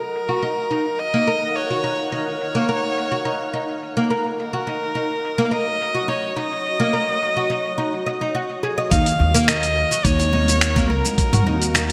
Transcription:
Already playing: ambient pad D#4 A#4 F5 F#5, kamancheh A#4
0.02 shaker
0.15 shaker
0.29 oud F#4, shaker
0.42 oud D#4, shaker
0.58 shaker
0.71 oud D#4, shaker
0.86 shaker
0.99 kamancheh D#5, shaker
1.14 oud A#3
1.27 oud A#4, shaker
1.43 shaker
1.55 kamancheh C#5, shaker
1.70 oud F#4, shaker
1.84 oud D#4, shaker
1.99 shaker
2.12 oud D#4, kamancheh C#5, shaker
2.28 shaker
2.41 shaker
2.55 oud A#3, shaker
2.69 oud A#4, shaker
2.84 shaker
2.97 shaker
3.12 oud F#4, shaker
3.25 oud D#4, shaker
3.41 shaker
3.53 oud D#4, shaker
3.69 shaker
3.82 shaker
3.97 oud A#3, shaker
4.10 oud A#4, shaker
4.26 shaker
4.38 ambient pad F#4 C#5 D#5, kamancheh A#4, shaker
4.53 oud F#4, shaker
4.67 oud D#4, shaker
4.83 shaker
4.95 oud D#4, shaker
5.11 shaker
5.25 shaker
5.38 oud A#3, shaker
5.45 kamancheh F5
5.51 oud A#4, kamancheh D#5, shaker
5.68 shaker
5.81 shaker
5.95 oud F#4, shaker
6.08 oud D#4, kamancheh C#5, shaker
6.24 shaker
6.36 oud D#4, kamancheh D#5, shaker
6.53 shaker
6.66 shaker
6.80 oud A#3, shaker
6.93 oud A#4, shaker
7.09 shaker
7.22 shaker
7.37 oud F#4, shaker
7.50 oud D#4, shaker
7.65 shaker
7.78 oud D#4, shaker
7.94 shaker
8.06 oud D#5, shaker
8.21 oud D#4, shaker
8.35 oud F#4, shaker
8.50 shaker
8.63 oud G#4, shaker
8.78 oud D#5, shaker
8.91 upright bass D#2, ambient pad D#4 F#4 A#4 F5, oud D#4, kamancheh F5, kick, closed hi-hat, shaker
9.06 closed hi-hat, shaker
9.19 upright bass D#2, high bongo
9.34 oud A#3, closed hi-hat, shaker
9.48 oud A#4, kamancheh D#5, finger snap, closed hi-hat, shaker
9.63 closed hi-hat, shaker
9.91 oud F#4, shaker
10.04 upright bass D#2, oud D#4, kamancheh C#5, kick, closed hi-hat, shaker
10.19 closed hi-hat, high bongo, shaker
10.32 oud D#4, high conga, low conga
10.48 closed hi-hat, high bongo, shaker
10.61 finger snap, closed hi-hat, shaker
10.76 oud A#3, kick, closed hi-hat, high bongo, high conga, low conga, shaker
10.90 upright bass C#2, kamancheh A#4, oud A#4
11.05 high bongo, low conga, shaker
11.18 ambient pad D#5, kick, closed hi-hat, shaker
11.33 upright bass G#2, oud F#4, closed hi-hat, low conga, shaker
11.46 upright bass D#2, oud D#4, high bongo, high conga
11.62 closed hi-hat, shaker
11.74 oud D#4, finger snap, closed hi-hat, shaker

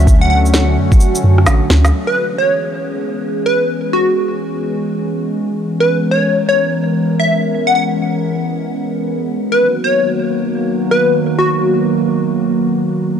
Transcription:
Already playing: 808-style bass D2, ambient pad D3 F#3 A3 C#4 F#4
0.07 kick, shaker
0.21 digital synth lead F#5
0.30 digital synth lead F#5
0.46 shaker
0.54 snare, shaker
0.77 808-style bass F#2
0.92 kick, shaker
1.00 shaker
1.15 shaker
1.24 808-style bass F#2
1.38 cross-stick
1.47 808-style bass A1, snare, shaker
1.70 808-style bass D2, snare
1.85 snare, shaker
1.92 ambient pad E3 G#3 B3 C#4 G#4
2.07 digital synth lead B4
2.38 digital synth lead C#5
3.46 digital synth lead B4
3.93 digital synth lead F#4
5.65 ambient pad A#4
5.80 digital synth lead B4
6.11 digital synth lead C#5
6.49 digital synth lead C#5
7.20 digital synth lead E5
7.67 digital synth lead F#5
7.75 digital synth lead F#5
9.38 ambient pad D#3 F#3 A#3 F#4
9.52 digital synth lead B4
9.84 digital synth lead C#5
10.91 digital synth lead B4
11.39 digital synth lead F#4
13.08 ambient pad D3 F#3 A3 C#4 F#4

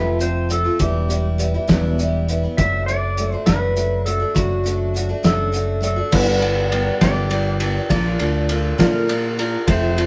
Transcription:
Already playing: fingered electric bass F1, steel-string acoustic guitar F2 C3 F3 A3 C4 F4, electric slide guitar B4
0.19 steel-string acoustic guitar F3 A3 C4 F4, electric slide guitar C5, closed hi-hat
0.49 steel-string acoustic guitar F3 A3 C4 F4, electric slide guitar A4, closed hi-hat
0.64 steel-string acoustic guitar F3 A3 C4 F4
0.79 fingered electric bass E1, steel-string acoustic guitar E2 B2 E3 G3 B3 E4, electric slide guitar G4, kick, closed hi-hat
1.09 steel-string acoustic guitar E3 G3 B3 E4, closed hi-hat
1.38 steel-string acoustic guitar E3 G3 B3 E4, closed hi-hat
1.54 steel-string acoustic guitar E3 G3 B3 E4
1.67 fingered electric bass E1, steel-string acoustic guitar E2 B2 E3 G3 B3 E4, kick, snare, closed hi-hat
1.98 steel-string acoustic guitar E3 G3 B3 E4, closed hi-hat
2.28 steel-string acoustic guitar E3 G3 B3 E4, closed hi-hat
2.43 steel-string acoustic guitar E3 G3 B3 E4
2.57 fingered electric bass F#1, steel-string acoustic guitar F#3 A3 D4 F#4, electric slide guitar E5, kick, closed hi-hat
2.86 steel-string acoustic guitar F#3 A3 D4, electric slide guitar D5, closed hi-hat
2.90 steel-string acoustic guitar F#4
3.17 steel-string acoustic guitar F#3 A3 D4 F#4, closed hi-hat
3.32 steel-string acoustic guitar A3 D4 F#4, electric slide guitar C5
3.46 fingered electric bass F#1, steel-string acoustic guitar F#3 A3 D4 F#4, electric slide guitar B4, kick, snare, closed hi-hat
3.76 steel-string acoustic guitar F#3 A3 D4 F#4, closed hi-hat
4.06 steel-string acoustic guitar F#3 A3 D4 F#4, electric slide guitar A4, closed hi-hat
4.20 steel-string acoustic guitar A3 D4 F#4
4.35 fingered electric bass F#1, steel-string acoustic guitar F#3 A3 D4 F#4, electric slide guitar F#4, kick, closed hi-hat
4.64 steel-string acoustic guitar F#3 A3 D4 F#4, closed hi-hat
4.94 steel-string acoustic guitar F#3 A3 D4 F#4, closed hi-hat
5.09 steel-string acoustic guitar A3 D4 F#4
5.23 fingered electric bass F#1, steel-string acoustic guitar F#3 A3 D4 F#4, electric slide guitar A4, snare, closed hi-hat
5.52 steel-string acoustic guitar F#3 A3 D4 F#4, closed hi-hat
5.81 steel-string acoustic guitar F#3 A3 D4 F#4, closed hi-hat
5.85 electric slide guitar A4
5.96 steel-string acoustic guitar A3 D4 F#4
6.11 fingered electric bass G1, steel-string acoustic guitar G2 D3 G3 B3 D4 G4, upright piano G4 B4 D5, electric slide guitar B4, kick, crash
6.42 steel-string acoustic guitar G3 B3 D4 G4, ride
6.72 steel-string acoustic guitar G3 B3 D4 G4, ride
7.01 fingered electric bass G1, steel-string acoustic guitar G2 D3 G3 B3 D4 G4, upright piano G4 B4 E5, electric slide guitar D5, kick, snare, ride
7.30 steel-string acoustic guitar G3 B3 D4 G4, ride
7.60 steel-string acoustic guitar G3 B3 D4 G4, ride
7.90 fingered electric bass A#1, steel-string acoustic guitar A#2 D3 A#3 D4 F4, upright piano F4 A#4 D5, electric slide guitar D5, kick, ride
8.19 fingered electric bass D2, steel-string acoustic guitar A#3 D4 F4, ride
8.49 steel-string acoustic guitar D3 A#3 D4 F4, ride
8.78 steel-string acoustic guitar A#2 D3 A#3 D4 F4, fingered electric bass A#2, upright piano F4 A#4 E5, electric slide guitar A#4, kick, snare, ride
9.07 steel-string acoustic guitar D3 A#3 D4 F4, ride
9.37 steel-string acoustic guitar A#3 D4 F4, electric slide guitar A#4, ride
9.66 fingered electric bass F1, steel-string acoustic guitar F2 C3 F3 A3 C4 F4, upright piano F4 A4 C5, electric slide guitar C5, kick, ride
9.97 steel-string acoustic guitar F3 A3 C4 F4, ride

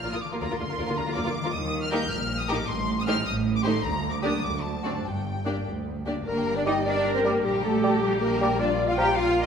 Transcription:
Already playing: harp A#2 F3 A#3 D4 F4, violin section F6
0.04 double bass section A#1, cello section A#2, viola section A#3 F4, violin section A#4 D5
0.13 cello section A#2, viola section A#3 F4, violin section F4 A#4 D#6
0.21 harp D3, violin section D6
0.28 cello section A#2, harp F3
0.32 harp A#3, viola section A#3 F4, violin section F4 A#4
0.38 double bass section D2, harp F4, violin section A#4 D5 A#5
0.42 cello section D3, viola section A#3 F4
0.51 cello section D3, viola section A#3 F4, violin section F4 A#4
0.60 double bass section D2, cello section D3, viola section A#3 F4, violin section D4 F4 C6
0.69 cello section D3, viola section A#3 F4, violin section F4 A#4
0.79 double bass section D2, cello section D3, viola section A#3 F4, violin section A#4 D5
0.88 cello section D3, viola section A#3 F4, violin section F4 A#4
0.96 double bass section D2, cello section D3, viola section A#3 F4, violin section D4 F4 A#5
1.07 cello section D3, viola section A#3 F4, violin section F4 A#4
1.15 double bass section D2, cello section D3, viola section A#3 F4, violin section A#4 D5 D6
1.26 cello section D3, viola section A#3 F4, violin section F4 A#4
1.37 harp D#3
1.41 harp G3, violin section F4 A#4
1.45 cello section D3, harp A#3, viola section A#3 F4
1.50 harp D#4, violin section D#6
1.55 double bass section D#2, cello section D#3
1.83 violin section F6
1.91 viola section A#3 D#4, violin section G4 A#4 G6
2.11 double bass section A#1, cello section A#2, violin section F6
2.40 violin section D#6
2.49 harp A2, viola section A#3 D#4, violin section G4 A#4 D6
2.56 harp G3
2.60 harp A3
2.65 harp D#4, violin section C6
2.70 double bass section A1, cello section A2
3.00 violin section D#6
3.06 viola section A3 D#4, violin section G4 C5 F6
3.27 double bass section A1, cello section A2, violin section D#6
3.57 violin section D6
3.64 harp D3, viola section A3 D#4, violin section G4 C5 C6
3.72 harp G3
3.76 harp A#3
3.81 double bass section D2, harp D4, violin section A#5
3.85 cello section D2
4.13 violin section D6
4.23 harp D3, viola section A#3 D4, violin section G4 D5 D#6
4.31 harp F#3
4.35 harp C4
4.40 harp D4
4.44 cello section D2, double bass section D2, violin section D6
4.63 violin section A5
4.84 harp G2, viola section C4 D4, violin section F#4 D5
4.91 harp G3
4.96 harp A#3
5.00 harp D4, violin section G5
5.05 double bass section G1, cello section G2
5.45 viola section A#3 D4, violin section G4 D5
5.67 double bass section D2, cello section D2
6.07 viola section A#3 D4, violin section G4 D5
6.26 double bass section G1, harp G2, cello section A#3, french horn section D4 G4, violin section A#4 A#5, clarinet A#4
6.37 harp D3, violin section G5
6.46 harp G3, violin section A#5
6.56 harp D4, cello section D4, clarinet D5, violin section D5 G5
6.65 bassoon G3, cello section D#4, oboe D5, clarinet D#5, violin section D#5 A#5, flute section G5
6.76 harp D4, violin section G5
6.85 cello section D4, viola section A#4, clarinet D5, harp D5, violin section D5 A#5
6.96 harp G5, violin section G5
7.04 harp G4, violin section A#5
7.15 cello section C4, harp D4, clarinet C5, violin section C5 G5
7.23 harp G3, bassoon G3, cello section A#3, clarinet A#4, violin section A#4 A#5, oboe D5, flute section G5
7.33 harp D3, violin section G5
7.44 double bass section A#1, harp A#2, cello section G3, viola section G4, violin section G4 A#5, clarinet G4
7.53 harp A#3, violin section G5
7.63 harp G3, cello section A3, clarinet A4, violin section A4 A#5
7.72 harp D4, violin section G5
7.82 bassoon G3, harp G4, oboe D5, flute section G5, violin section A#5
7.93 harp D4, violin section G5
8.02 cello section G3, violin section G4 A#5, clarinet G4, harp D5
8.12 violin section G5, harp G5
8.21 cello section A#3, harp G4, clarinet A#4, violin section A#4 A#5
8.30 harp D4, violin section G5
8.41 bassoon G3, harp G3, oboe D5, flute section G5, violin section A#5
8.51 harp A#3, violin section G5
8.60 harp A#2, french horn section A#3 F4, cello section D4, viola section F4, clarinet D5, violin section D5
8.70 harp A#3, violin section F5
8.78 harp F3, violin section D5
8.88 cello section F4, harp F4, clarinet F5, violin section F5
8.97 bassoon F3, cello section G4, violin section D5 G5, oboe F5, clarinet G5, flute section A#5
9.07 harp F4, violin section F5
9.16 cello section F4, violin section D5 F5, clarinet F5, harp F5
9.27 violin section F5, harp A#5
9.35 harp F4, violin section D5

